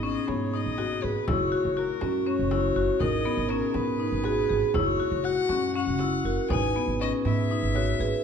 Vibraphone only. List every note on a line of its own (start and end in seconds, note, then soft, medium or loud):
0.00 1.24 D#4 medium
1.27 2.00 F#4 medium
2.01 3.03 F#4 medium
3.00 4.20 A#4 medium
4.24 4.76 G#4 medium
4.75 6.30 F#4 medium
6.25 6.51 A#4 medium
6.50 7.79 B4 medium
7.75 7.98 C#5 medium
7.99 8.23 B4 medium